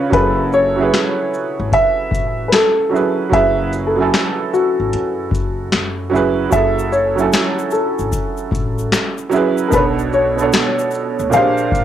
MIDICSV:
0, 0, Header, 1, 5, 480
1, 0, Start_track
1, 0, Key_signature, 3, "minor"
1, 0, Tempo, 800000
1, 71, Time_signature, 4, 2, 24, 8
1, 7106, End_track
2, 0, Start_track
2, 0, Title_t, "Upright piano"
2, 0, Program_c, 0, 0
2, 79, Note_on_c, 0, 71, 94
2, 322, Note_off_c, 0, 71, 0
2, 322, Note_on_c, 0, 73, 101
2, 1041, Note_on_c, 0, 76, 113
2, 1058, Note_off_c, 0, 73, 0
2, 1489, Note_on_c, 0, 71, 60
2, 1500, Note_off_c, 0, 76, 0
2, 1515, Note_off_c, 0, 71, 0
2, 1522, Note_on_c, 0, 69, 92
2, 1889, Note_off_c, 0, 69, 0
2, 2000, Note_on_c, 0, 76, 108
2, 2219, Note_off_c, 0, 76, 0
2, 2320, Note_on_c, 0, 69, 71
2, 2613, Note_off_c, 0, 69, 0
2, 2721, Note_on_c, 0, 66, 83
2, 3652, Note_off_c, 0, 66, 0
2, 3915, Note_on_c, 0, 76, 104
2, 4155, Note_on_c, 0, 73, 84
2, 4160, Note_off_c, 0, 76, 0
2, 4634, Note_on_c, 0, 69, 79
2, 4647, Note_off_c, 0, 73, 0
2, 5569, Note_off_c, 0, 69, 0
2, 5810, Note_on_c, 0, 70, 66
2, 5835, Note_off_c, 0, 70, 0
2, 5841, Note_on_c, 0, 71, 92
2, 5894, Note_off_c, 0, 71, 0
2, 6081, Note_on_c, 0, 73, 91
2, 6801, Note_on_c, 0, 77, 105
2, 6818, Note_off_c, 0, 73, 0
2, 7106, Note_off_c, 0, 77, 0
2, 7106, End_track
3, 0, Start_track
3, 0, Title_t, "Felt piano"
3, 0, Program_c, 1, 0
3, 0, Control_c, 1, 64, 127
3, 0, Note_on_c, 1, 49, 84
3, 0, Note_on_c, 1, 61, 70
3, 0, Note_on_c, 1, 62, 80
3, 0, Note_on_c, 1, 65, 75
3, 0, Note_on_c, 1, 71, 79
3, 0, Note_on_c, 1, 73, 89
3, 58, Note_on_c, 1, 54, 79
3, 67, Note_off_c, 1, 61, 0
3, 67, Note_on_c, 1, 61, 71
3, 77, Note_on_c, 1, 64, 68
3, 79, Control_c, 1, 64, 0
3, 80, Note_off_c, 1, 73, 0
3, 81, Note_off_c, 1, 71, 0
3, 83, Note_off_c, 1, 65, 0
3, 85, Note_off_c, 1, 49, 0
3, 85, Note_off_c, 1, 62, 0
3, 86, Note_on_c, 1, 68, 72
3, 96, Note_on_c, 1, 69, 77
3, 164, Control_c, 1, 64, 127
3, 384, Note_off_c, 1, 54, 0
3, 388, Note_off_c, 1, 61, 0
3, 393, Note_off_c, 1, 64, 0
3, 398, Note_off_c, 1, 68, 0
3, 403, Note_off_c, 1, 69, 0
3, 455, Note_on_c, 1, 54, 71
3, 464, Note_on_c, 1, 61, 64
3, 474, Note_on_c, 1, 64, 63
3, 484, Note_on_c, 1, 68, 65
3, 493, Note_on_c, 1, 71, 78
3, 1238, Note_off_c, 1, 54, 0
3, 1242, Note_off_c, 1, 61, 0
3, 1247, Note_off_c, 1, 64, 0
3, 1252, Note_off_c, 1, 68, 0
3, 1257, Note_off_c, 1, 71, 0
3, 1737, Note_on_c, 1, 54, 66
3, 1746, Note_on_c, 1, 61, 62
3, 1755, Note_on_c, 1, 64, 61
3, 1765, Note_on_c, 1, 68, 61
3, 1774, Note_on_c, 1, 71, 75
3, 1956, Note_off_c, 1, 54, 0
3, 1961, Note_off_c, 1, 61, 0
3, 1966, Note_off_c, 1, 64, 0
3, 1971, Note_off_c, 1, 68, 0
3, 1975, Note_off_c, 1, 71, 0
3, 1976, Note_on_c, 1, 54, 73
3, 1986, Note_on_c, 1, 61, 65
3, 1996, Note_on_c, 1, 64, 66
3, 2005, Note_on_c, 1, 68, 69
3, 2015, Note_on_c, 1, 71, 84
3, 2303, Note_off_c, 1, 54, 0
3, 2308, Note_off_c, 1, 61, 0
3, 2313, Note_off_c, 1, 64, 0
3, 2317, Note_off_c, 1, 68, 0
3, 2322, Note_off_c, 1, 71, 0
3, 2375, Note_on_c, 1, 54, 69
3, 2384, Note_on_c, 1, 61, 58
3, 2394, Note_on_c, 1, 64, 64
3, 2403, Note_on_c, 1, 80, 63
3, 2412, Note_on_c, 1, 69, 82
3, 3157, Note_off_c, 1, 54, 0
3, 3162, Note_off_c, 1, 61, 0
3, 3167, Note_off_c, 1, 64, 0
3, 3172, Note_off_c, 1, 80, 0
3, 3176, Note_off_c, 1, 69, 0
3, 3658, Note_on_c, 1, 54, 80
3, 3667, Note_on_c, 1, 61, 75
3, 3677, Note_on_c, 1, 64, 77
3, 3686, Note_on_c, 1, 68, 73
3, 3696, Note_on_c, 1, 71, 90
3, 3877, Note_off_c, 1, 54, 0
3, 3881, Note_off_c, 1, 61, 0
3, 3886, Note_off_c, 1, 64, 0
3, 3891, Note_off_c, 1, 68, 0
3, 3896, Note_off_c, 1, 71, 0
3, 3897, Note_on_c, 1, 54, 74
3, 3907, Note_on_c, 1, 61, 68
3, 3916, Note_on_c, 1, 64, 64
3, 3919, Control_c, 1, 64, 0
3, 3925, Note_on_c, 1, 68, 71
3, 3936, Note_on_c, 1, 69, 82
3, 4029, Control_c, 1, 64, 127
3, 4223, Note_off_c, 1, 54, 0
3, 4228, Note_off_c, 1, 61, 0
3, 4233, Note_off_c, 1, 64, 0
3, 4237, Note_off_c, 1, 68, 0
3, 4242, Note_off_c, 1, 69, 0
3, 4295, Note_on_c, 1, 54, 70
3, 4303, Note_on_c, 1, 61, 65
3, 4313, Note_on_c, 1, 64, 65
3, 4323, Note_on_c, 1, 80, 61
3, 4332, Note_on_c, 1, 69, 79
3, 5078, Note_off_c, 1, 54, 0
3, 5082, Note_off_c, 1, 61, 0
3, 5087, Note_off_c, 1, 64, 0
3, 5092, Note_off_c, 1, 80, 0
3, 5096, Note_off_c, 1, 69, 0
3, 5577, Note_on_c, 1, 54, 86
3, 5587, Note_on_c, 1, 61, 82
3, 5596, Note_on_c, 1, 64, 83
3, 5607, Note_on_c, 1, 68, 73
3, 5616, Note_on_c, 1, 71, 90
3, 5797, Note_off_c, 1, 54, 0
3, 5802, Note_off_c, 1, 61, 0
3, 5806, Note_off_c, 1, 64, 0
3, 5811, Note_off_c, 1, 68, 0
3, 5816, Note_off_c, 1, 71, 0
3, 5819, Note_on_c, 1, 47, 82
3, 5829, Note_on_c, 1, 59, 67
3, 5838, Control_c, 1, 64, 0
3, 5838, Note_on_c, 1, 62, 76
3, 5847, Note_on_c, 1, 69, 69
3, 5857, Note_on_c, 1, 73, 82
3, 5936, Control_c, 1, 64, 127
3, 6144, Note_off_c, 1, 47, 0
3, 6149, Note_off_c, 1, 59, 0
3, 6154, Note_off_c, 1, 62, 0
3, 6158, Note_off_c, 1, 69, 0
3, 6163, Note_off_c, 1, 73, 0
3, 6216, Note_on_c, 1, 47, 72
3, 6225, Note_on_c, 1, 59, 69
3, 6234, Note_on_c, 1, 62, 66
3, 6243, Note_on_c, 1, 69, 66
3, 6254, Note_on_c, 1, 73, 84
3, 6779, Note_on_c, 1, 46, 78
3, 6785, Note_off_c, 1, 47, 0
3, 6787, Note_on_c, 1, 58, 78
3, 6790, Note_off_c, 1, 59, 0
3, 6794, Note_off_c, 1, 62, 0
3, 6794, Note_on_c, 1, 60, 58
3, 6799, Note_off_c, 1, 69, 0
3, 6799, Control_c, 1, 64, 0
3, 6802, Note_on_c, 1, 67, 73
3, 6804, Note_off_c, 1, 73, 0
3, 6810, Note_on_c, 1, 68, 70
3, 6817, Note_on_c, 1, 72, 90
3, 6833, Note_on_c, 1, 62, 70
3, 6843, Note_off_c, 1, 60, 0
3, 6913, Control_c, 1, 64, 127
3, 7106, Note_off_c, 1, 46, 0
3, 7106, Note_off_c, 1, 58, 0
3, 7106, Note_off_c, 1, 62, 0
3, 7106, Note_off_c, 1, 67, 0
3, 7106, Note_off_c, 1, 68, 0
3, 7106, Note_off_c, 1, 72, 0
3, 7106, End_track
4, 0, Start_track
4, 0, Title_t, "Upright bass"
4, 0, Program_c, 2, 32
4, 77, Note_on_c, 2, 30, 110
4, 530, Note_off_c, 2, 30, 0
4, 957, Note_on_c, 2, 32, 98
4, 1031, Note_off_c, 2, 32, 0
4, 1272, Note_on_c, 2, 33, 77
4, 1498, Note_off_c, 2, 33, 0
4, 1997, Note_on_c, 2, 30, 102
4, 2450, Note_off_c, 2, 30, 0
4, 2877, Note_on_c, 2, 32, 79
4, 2951, Note_off_c, 2, 32, 0
4, 2958, Note_on_c, 2, 42, 94
4, 3181, Note_off_c, 2, 42, 0
4, 3192, Note_on_c, 2, 30, 81
4, 3418, Note_off_c, 2, 30, 0
4, 3440, Note_on_c, 2, 42, 86
4, 3662, Note_off_c, 2, 42, 0
4, 3679, Note_on_c, 2, 30, 80
4, 3902, Note_off_c, 2, 30, 0
4, 3916, Note_on_c, 2, 30, 91
4, 4370, Note_off_c, 2, 30, 0
4, 4795, Note_on_c, 2, 32, 82
4, 4870, Note_off_c, 2, 32, 0
4, 5112, Note_on_c, 2, 33, 88
4, 5338, Note_off_c, 2, 33, 0
4, 5836, Note_on_c, 2, 35, 100
4, 6290, Note_off_c, 2, 35, 0
4, 6717, Note_on_c, 2, 38, 87
4, 6791, Note_off_c, 2, 38, 0
4, 6797, Note_on_c, 2, 34, 99
4, 7020, Note_off_c, 2, 34, 0
4, 7033, Note_on_c, 2, 32, 83
4, 7106, Note_off_c, 2, 32, 0
4, 7106, End_track
5, 0, Start_track
5, 0, Title_t, "Drums"
5, 73, Note_on_c, 9, 36, 113
5, 80, Note_on_c, 9, 42, 89
5, 133, Note_off_c, 9, 36, 0
5, 140, Note_off_c, 9, 42, 0
5, 317, Note_on_c, 9, 82, 41
5, 377, Note_off_c, 9, 82, 0
5, 563, Note_on_c, 9, 38, 112
5, 569, Note_on_c, 9, 26, 91
5, 574, Note_on_c, 9, 42, 60
5, 623, Note_off_c, 9, 38, 0
5, 629, Note_off_c, 9, 26, 0
5, 634, Note_off_c, 9, 42, 0
5, 804, Note_on_c, 9, 82, 45
5, 864, Note_off_c, 9, 82, 0
5, 1033, Note_on_c, 9, 36, 87
5, 1037, Note_on_c, 9, 42, 83
5, 1093, Note_off_c, 9, 36, 0
5, 1097, Note_off_c, 9, 42, 0
5, 1268, Note_on_c, 9, 36, 97
5, 1288, Note_on_c, 9, 42, 56
5, 1288, Note_on_c, 9, 82, 59
5, 1328, Note_off_c, 9, 36, 0
5, 1348, Note_off_c, 9, 42, 0
5, 1348, Note_off_c, 9, 82, 0
5, 1515, Note_on_c, 9, 38, 109
5, 1516, Note_on_c, 9, 42, 53
5, 1521, Note_on_c, 9, 26, 79
5, 1575, Note_off_c, 9, 38, 0
5, 1576, Note_off_c, 9, 42, 0
5, 1581, Note_off_c, 9, 26, 0
5, 1775, Note_on_c, 9, 82, 42
5, 1835, Note_off_c, 9, 82, 0
5, 1992, Note_on_c, 9, 36, 109
5, 2000, Note_on_c, 9, 42, 81
5, 2052, Note_off_c, 9, 36, 0
5, 2060, Note_off_c, 9, 42, 0
5, 2237, Note_on_c, 9, 42, 43
5, 2237, Note_on_c, 9, 82, 45
5, 2297, Note_off_c, 9, 42, 0
5, 2297, Note_off_c, 9, 82, 0
5, 2483, Note_on_c, 9, 38, 113
5, 2489, Note_on_c, 9, 26, 86
5, 2494, Note_on_c, 9, 42, 57
5, 2543, Note_off_c, 9, 38, 0
5, 2549, Note_off_c, 9, 26, 0
5, 2554, Note_off_c, 9, 42, 0
5, 2725, Note_on_c, 9, 82, 47
5, 2785, Note_off_c, 9, 82, 0
5, 2958, Note_on_c, 9, 42, 86
5, 3018, Note_off_c, 9, 42, 0
5, 3188, Note_on_c, 9, 36, 102
5, 3208, Note_on_c, 9, 42, 57
5, 3208, Note_on_c, 9, 82, 54
5, 3248, Note_off_c, 9, 36, 0
5, 3268, Note_off_c, 9, 42, 0
5, 3268, Note_off_c, 9, 82, 0
5, 3433, Note_on_c, 9, 38, 100
5, 3435, Note_on_c, 9, 42, 50
5, 3440, Note_on_c, 9, 26, 81
5, 3493, Note_off_c, 9, 38, 0
5, 3495, Note_off_c, 9, 42, 0
5, 3500, Note_off_c, 9, 26, 0
5, 3693, Note_on_c, 9, 82, 39
5, 3753, Note_off_c, 9, 82, 0
5, 3912, Note_on_c, 9, 36, 106
5, 3912, Note_on_c, 9, 82, 78
5, 3918, Note_on_c, 9, 42, 89
5, 3972, Note_off_c, 9, 36, 0
5, 3972, Note_off_c, 9, 82, 0
5, 3978, Note_off_c, 9, 42, 0
5, 4073, Note_on_c, 9, 82, 45
5, 4133, Note_off_c, 9, 82, 0
5, 4156, Note_on_c, 9, 82, 44
5, 4216, Note_off_c, 9, 82, 0
5, 4311, Note_on_c, 9, 82, 46
5, 4371, Note_off_c, 9, 82, 0
5, 4396, Note_on_c, 9, 82, 62
5, 4401, Note_on_c, 9, 38, 117
5, 4408, Note_on_c, 9, 26, 104
5, 4412, Note_on_c, 9, 42, 63
5, 4456, Note_off_c, 9, 82, 0
5, 4461, Note_off_c, 9, 38, 0
5, 4468, Note_off_c, 9, 26, 0
5, 4472, Note_off_c, 9, 42, 0
5, 4553, Note_on_c, 9, 82, 49
5, 4613, Note_off_c, 9, 82, 0
5, 4625, Note_on_c, 9, 82, 50
5, 4645, Note_off_c, 9, 82, 0
5, 4645, Note_on_c, 9, 82, 53
5, 4705, Note_off_c, 9, 82, 0
5, 4793, Note_on_c, 9, 82, 41
5, 4853, Note_off_c, 9, 82, 0
5, 4873, Note_on_c, 9, 36, 86
5, 4874, Note_on_c, 9, 82, 72
5, 4878, Note_on_c, 9, 42, 84
5, 4933, Note_off_c, 9, 36, 0
5, 4934, Note_off_c, 9, 82, 0
5, 4938, Note_off_c, 9, 42, 0
5, 5024, Note_on_c, 9, 82, 37
5, 5084, Note_off_c, 9, 82, 0
5, 5108, Note_on_c, 9, 36, 93
5, 5129, Note_on_c, 9, 42, 61
5, 5129, Note_on_c, 9, 82, 60
5, 5168, Note_off_c, 9, 36, 0
5, 5189, Note_off_c, 9, 42, 0
5, 5189, Note_off_c, 9, 82, 0
5, 5271, Note_on_c, 9, 82, 44
5, 5331, Note_off_c, 9, 82, 0
5, 5353, Note_on_c, 9, 38, 104
5, 5355, Note_on_c, 9, 42, 54
5, 5358, Note_on_c, 9, 82, 59
5, 5360, Note_on_c, 9, 26, 88
5, 5413, Note_off_c, 9, 38, 0
5, 5415, Note_off_c, 9, 42, 0
5, 5418, Note_off_c, 9, 82, 0
5, 5420, Note_off_c, 9, 26, 0
5, 5507, Note_on_c, 9, 82, 49
5, 5567, Note_off_c, 9, 82, 0
5, 5591, Note_on_c, 9, 82, 48
5, 5613, Note_off_c, 9, 82, 0
5, 5613, Note_on_c, 9, 82, 40
5, 5673, Note_off_c, 9, 82, 0
5, 5746, Note_on_c, 9, 82, 49
5, 5806, Note_off_c, 9, 82, 0
5, 5832, Note_on_c, 9, 36, 124
5, 5832, Note_on_c, 9, 82, 77
5, 5840, Note_on_c, 9, 42, 86
5, 5892, Note_off_c, 9, 36, 0
5, 5892, Note_off_c, 9, 82, 0
5, 5900, Note_off_c, 9, 42, 0
5, 5993, Note_on_c, 9, 82, 46
5, 6053, Note_off_c, 9, 82, 0
5, 6077, Note_on_c, 9, 82, 41
5, 6137, Note_off_c, 9, 82, 0
5, 6231, Note_on_c, 9, 82, 51
5, 6291, Note_off_c, 9, 82, 0
5, 6316, Note_on_c, 9, 82, 63
5, 6322, Note_on_c, 9, 38, 116
5, 6328, Note_on_c, 9, 26, 91
5, 6333, Note_on_c, 9, 42, 63
5, 6376, Note_off_c, 9, 82, 0
5, 6382, Note_off_c, 9, 38, 0
5, 6388, Note_off_c, 9, 26, 0
5, 6393, Note_off_c, 9, 42, 0
5, 6473, Note_on_c, 9, 82, 50
5, 6533, Note_off_c, 9, 82, 0
5, 6545, Note_on_c, 9, 82, 47
5, 6565, Note_off_c, 9, 82, 0
5, 6565, Note_on_c, 9, 82, 52
5, 6625, Note_off_c, 9, 82, 0
5, 6715, Note_on_c, 9, 82, 43
5, 6775, Note_off_c, 9, 82, 0
5, 6794, Note_on_c, 9, 82, 70
5, 6800, Note_on_c, 9, 42, 81
5, 6854, Note_off_c, 9, 82, 0
5, 6860, Note_off_c, 9, 42, 0
5, 6945, Note_on_c, 9, 82, 40
5, 7005, Note_off_c, 9, 82, 0
5, 7029, Note_on_c, 9, 36, 98
5, 7050, Note_on_c, 9, 42, 56
5, 7050, Note_on_c, 9, 82, 56
5, 7089, Note_off_c, 9, 36, 0
5, 7106, Note_off_c, 9, 42, 0
5, 7106, Note_off_c, 9, 82, 0
5, 7106, End_track
0, 0, End_of_file